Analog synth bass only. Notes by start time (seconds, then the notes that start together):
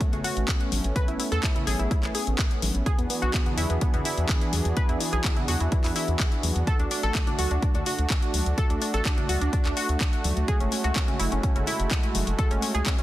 0.13 A1
0.37 A1
0.72 A1
0.84 A1
1.08 A1
1.32 E2
1.67 A1
1.80 A1
2.03 A1
2.27 A1
2.62 A1
2.75 A1
2.99 E2
3.22 B1
3.58 E2
3.70 E2
3.94 E2
4.18 E2
4.53 E2
4.65 E2
4.89 E2
5.13 B1
5.48 E2
5.61 E2
5.84 E2
6.08 E2
6.43 E2
6.56 E2
6.80 D2
7.03 A1
7.39 D2
7.51 D2
7.75 D2
7.99 D2
8.34 D2
8.46 D2
8.70 D2
8.94 A1
9.29 D2
9.41 D2
9.65 D2
9.89 D2
10.24 D2
10.37 D2
10.61 F#1
10.84 C#2
11.20 F#1
11.32 F#1
11.56 F#1
11.80 F#1
12.15 F#1
12.27 F#1
12.51 F#1
12.75 C#2